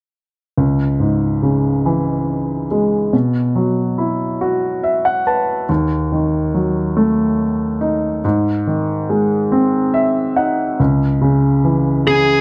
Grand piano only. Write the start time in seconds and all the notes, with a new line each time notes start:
0.58 C#2
1.00 G#2
1.43 C#3
1.86 E3
2.71 G#3
3.13 B2
3.55 F#3
3.98 E4
4.41 F#4
4.83 E5
5.05 F#5
5.27 B4 A5
5.69 D#2
6.12 D#3
6.54 F#3
6.97 A3
7.81 D#4
8.25 G#2
8.67 D#3
9.10 G#3
9.52 C4
9.94 E5
10.36 D#4 F#5
10.80 C#2
11.21 C#3
11.64 E3
12.07 C#3